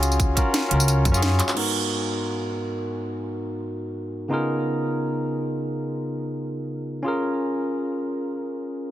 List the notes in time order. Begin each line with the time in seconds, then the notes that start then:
Already playing: C#2 C#4 F4 F#4 G#4
0.03 closed hi-hat, tambourine
0.12 tambourine
0.20 kick, closed hi-hat, tambourine
0.35 C#4 F4 F#4 A#4, kick, closed hi-hat, tambourine
0.54 snare, closed hi-hat, tambourine
0.68 C#2 C#4 F4 F#4, closed hi-hat
0.74 A#4
0.80 tambourine
0.88 closed hi-hat, tambourine
1.05 F#2, kick, closed hi-hat, tambourine
1.12 C#4 F4 F#4, tambourine
1.17 G#4
1.22 snare, closed hi-hat, tambourine
1.40 clap, closed hi-hat, tambourine
1.49 clap, tambourine
1.54 G#2 B3 D#4, crash
1.58 F#4 A#4
4.28 C#3 B3 D#4 F4
4.33 G#4 A#4
7.03 C#4 F4 G#4
7.08 A#4